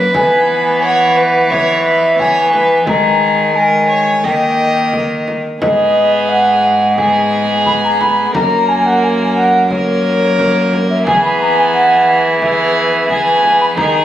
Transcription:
Already playing: F#2 A#3 B4
0.14 E3 B3 G#5, frame drum
0.82 C#5 F#5
1.16 B4
1.50 B3 C#5 E5, frame drum
1.84 B4
2.18 B3 C#5 G#5, frame drum
2.52 B4, frame drum
2.86 D#3 G#3 G#4 A#5, frame drum
3.54 G#3 A#4 G#5
3.89 C#5
4.24 D#3 A#3 D#5 G5, frame drum
4.93 frame drum
5.28 frame drum
5.61 G#2 B3 G#4 D#5, frame drum
6.29 F#5
6.98 B3 G#4 G#5, frame drum
7.66 B5, frame drum
7.84 A#5
8.00 B5, frame drum
8.35 F#2 A#3 A#4 A#5, frame drum
8.69 G#5
8.86 F#5
9.02 G#5
9.35 F#5
9.70 A#3 A#4 C#5, frame drum
10.39 frame drum
10.73 frame drum
10.90 E5
11.06 E3 B3 G#4 G#5, frame drum
11.24 B5
11.41 A#5
11.58 G#5
11.74 F#5
12.41 B3 G#4 E5, frame drum
13.09 B3 G#4 G#5, frame drum
13.43 frame drum
13.61 B5
13.77 D#3 D#4 G#4 A#5, frame drum

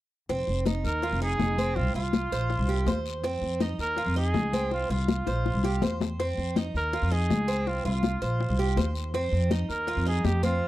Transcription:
0.29 F1 C4, high bongo, high conga, long guiro
0.47 F1, high bongo, high conga
0.66 D#4, high bongo, high conga, short guiro
0.84 D#2 A#4, high bongo, high conga, short guiro
1.02 F4, high bongo, high conga, long guiro
1.11 F1
1.21 D#4 G#4, high bongo, high conga
1.39 F1, high bongo, low bongo, high conga, short guiro
1.58 C4, high conga, short guiro
1.76 C2 F4, high bongo, high conga, long guiro
1.94 C2 F4, high bongo, high conga
2.13 high bongo, high conga, short guiro
2.32 A#1 C5, high bongo, high conga, short guiro
2.50 high bongo, high conga, long guiro
2.59 C2
2.68 G4, high bongo, high conga
2.86 D#2 C5, high bongo, low bongo, high conga, short guiro
3.06 short guiro
3.23 F2 C4, high bongo, high conga, long guiro
3.41 F2, high bongo, high conga
3.60 D#4, high bongo, high conga, short guiro
3.78 D#2 A#4, high bongo, high conga, short guiro
3.97 F4, high bongo, high conga, long guiro
4.06 F2
4.15 D#4 G#4, high bongo, high conga
4.34 C#2, high bongo, low bongo, high conga, short guiro
4.53 C4, high conga, short guiro
4.71 C2 F4, high bongo, high conga, long guiro
4.89 C2 F4, high bongo, high conga
5.08 high bongo, high conga, short guiro
5.26 A#1 C5, high bongo, high conga, short guiro
5.45 high bongo, high conga, long guiro
5.54 C2
5.63 G4, high bongo, high conga
5.82 E2 C5, low bongo, high conga, short guiro
6.01 low bongo, high conga, short guiro
6.19 F2 C4, high bongo, high conga, long guiro
6.38 F2, high bongo, high conga
6.56 D#4, high bongo, high conga, short guiro
6.74 D#2 A#4, high bongo, high conga, short guiro
6.93 F4, high bongo, high conga, long guiro
7.02 F2
7.11 D#4 G#4, high bongo, high conga
7.30 C#2, high bongo, low bongo, high conga, short guiro
7.48 C4, short guiro
7.67 C2 F4, high bongo, high conga, long guiro
7.85 C2 F4, high bongo, high conga
8.03 high bongo, high conga, short guiro
8.21 A#1 C5, high bongo, high conga, short guiro
8.40 high bongo, high conga, long guiro
8.49 C2
8.58 G4, high bongo, high conga
8.77 D#2 C5, high bongo, low bongo, high conga, short guiro
8.95 short guiro
9.14 F2 C4, high bongo, high conga, long guiro
9.32 F2, high bongo, high conga
9.51 D#4, high bongo, high conga, short guiro
9.69 D#2 A#4, high bongo, high conga, short guiro
9.87 F4, high bongo, high conga, long guiro
9.97 F2
10.06 D#4 G#4, high bongo, high conga
10.24 F2 G4, high bongo, low bongo, high conga, short guiro
10.43 C4 F4, high conga, short guiro

